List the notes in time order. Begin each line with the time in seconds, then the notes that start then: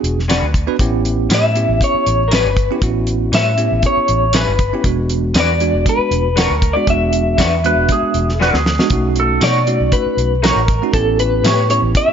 Already playing: B3 D4 F#4 G#4
0.03 E1, closed hi-hat
0.20 snare
0.28 G#3 D4 F#4 B4, snare, closed hi-hat, tambourine
0.42 D2
0.54 kick, closed hi-hat
0.67 B3 D4 F#4 B4
0.79 A1 B3 C#4 E4 G4, kick, closed hi-hat
1.05 closed hi-hat
1.30 A2 G3 C#4 E4 B4, snare, closed hi-hat, tambourine
1.34 E5
1.55 B3 C#4 E4 G4, closed hi-hat
1.69 A1
1.81 C#5, kick, closed hi-hat
1.94 muted fingered electric bass stroke
2.06 A1, closed hi-hat
2.28 G3 C#4 A#4, closed hi-hat, tambourine
2.32 E4 B4, snare
2.45 G1
2.57 kick, closed hi-hat
2.71 B3 C#4 E4 G4
2.82 A1 B3 C#4 E4 F#4, kick, closed hi-hat
3.07 closed hi-hat
3.32 A2 G3 C#4 E4 B4 E5, snare, closed hi-hat, tambourine
3.58 B3 C#4 E4 G4, closed hi-hat
3.72 A1
3.82 C#5, kick, closed hi-hat
3.97 muted fingered electric bass stroke
4.08 A1, closed hi-hat
4.33 G3 C#4 E4 B4, snare, closed hi-hat, tambourine
4.48 G1
4.59 kick, closed hi-hat
4.73 B3 C#4 E4 G4
4.84 E1 G#3 B3 D4 F#4, kick, closed hi-hat
5.09 closed hi-hat
5.34 E2 G#3 D4 F#4 B4, snare, closed hi-hat, tambourine
5.40 D5
5.60 G#3 B3 D4 F#4, closed hi-hat
5.73 E1
5.86 B4, kick, closed hi-hat
5.98 muted fingered electric bass stroke
6.11 E1, closed hi-hat
6.36 G#3 D4 F#4 B4, snare, closed hi-hat, tambourine
6.40 A#4
6.50 D2
6.62 kick, closed hi-hat
6.73 G#3 B3 D4 F#4 D5
6.87 E1 G#3 B3 D4 F#4 E5, kick, closed hi-hat
7.13 closed hi-hat
7.38 E2 G#3 D4 F#4 B4, kick, snare, closed hi-hat, tambourine
7.64 G#3 B3 D4 F#4 B4, closed hi-hat
7.76 E1
7.89 G#4, kick, closed hi-hat
8.03 muted fingered electric bass stroke
8.14 E1, closed hi-hat
8.29 snare
8.40 G#3 D4 F#4 B4, snare
8.53 D2 G#4, snare
8.66 snare
8.79 G#3 B3 D4 F#4, snare
8.90 B1 A3 C#4 D#4 F#4, kick, closed hi-hat
9.16 closed hi-hat
9.20 A4
9.41 B2 A3 D#4 F#4 C#5 D5, snare, closed hi-hat, tambourine
9.67 A3 C#4 D#4 F#4, closed hi-hat
9.80 B1
9.92 B4, kick, closed hi-hat
10.06 muted fingered electric bass stroke
10.17 B1, closed hi-hat
10.43 A3 D#4 F#4 A#4 C#5, snare, closed hi-hat, tambourine
10.56 A1
10.68 kick, closed hi-hat
10.82 A3 C#4 D#4 F#4
10.93 A1 B3 C#4 E4 G4 A4, kick, closed hi-hat
11.19 B4, closed hi-hat
11.43 A2 B3 E4 G4 C#5, snare, closed hi-hat, tambourine
11.69 B3 C#4 E4 G4 C#5, closed hi-hat
11.82 A1
11.95 E5, kick, closed hi-hat
12.08 muted fingered electric bass stroke